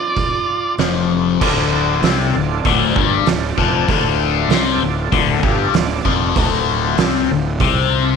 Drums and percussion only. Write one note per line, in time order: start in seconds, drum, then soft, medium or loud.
0.16 kick medium
0.16 open hi-hat soft
0.78 snare loud
0.78 open hi-hat soft
1.41 kick loud
1.41 crash loud
2.03 snare loud
2.03 open hi-hat medium
2.65 kick loud
2.65 open hi-hat medium
2.96 kick loud
3.26 snare loud
3.26 open hi-hat medium
3.58 kick medium
3.58 snare soft
3.88 kick loud
3.88 open hi-hat medium
4.50 snare loud
4.50 open hi-hat medium
5.12 kick loud
5.12 open hi-hat medium
5.43 kick loud
5.74 snare loud
5.74 open hi-hat medium
6.05 kick loud
6.36 kick loud
6.36 open hi-hat medium
6.98 snare loud
6.98 open hi-hat medium
7.60 kick loud
7.60 open hi-hat medium